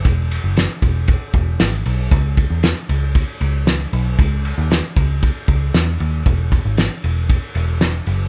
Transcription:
<<
  \new Staff \with { instrumentName = "Picked electric bass" } { \clef bass \time 4/4 \key e \major \tempo 4 = 116 e,,8. fis,,8 r16 e,,8. r16 e,,8 gis,,8 b,,8 | cis,8. e,8 r16 cis,8. r16 cis,4 b,,8 | cis,8. dis,8 r16 cis,8. r16 cis,8 e,8 dis,8 | e,,8. gis,,8 r16 e,,8. r16 e,,4 fis,,8 | }
  \new DrumStaff \with { instrumentName = "Drums" } \drummode { \time 4/4 <hhp bd cymr>8 cymr8 <cymr sn>8 <bd cymr>8 <bd cymr>8 <bd cymr>8 <cymr sn>8 <hho cymr>8 | <hhp bd cymr>8 <bd cymr>8 <cymr sn>8 cymr8 <bd cymr>8 cymr8 <cymr sn>8 <hho cymr>8 | <hhp bd cymr>8 cymr8 <cymr sn>8 <bd cymr>8 <bd cymr>8 <bd cymr>8 <cymr sn>8 cymr8 | <bd cymr>8 <bd cymr>8 <cymr sn>8 cymr8 <bd cymr>8 cymr8 <cymr sn>8 <hho cymr>8 | }
>>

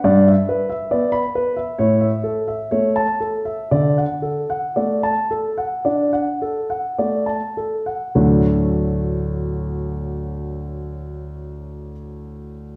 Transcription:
<<
  \new Staff \with { instrumentName = "Grand piano" } { \time 4/4 \key d \major \tempo 4 = 55 d''16 e''16 b'16 e''16 d''16 b''16 b'16 e''16 cis''16 e''16 a'16 e''16 cis''16 a''16 a'16 e''16 | d''16 fis''16 a'16 fis''16 d''16 a''16 a'16 fis''16 d''16 fis''16 a'16 fis''16 d''16 a''16 a'16 fis''16 | <d, a, fis a d' fis'>1 | }
  \new Staff \with { instrumentName = "Grand piano" } { \time 4/4 \key d \major g,8 r8 b8 r8 a,8 r8 a8 r8 | d8 r8 a8 r8 d'8 r8 a8 r8 | r1 | }
>>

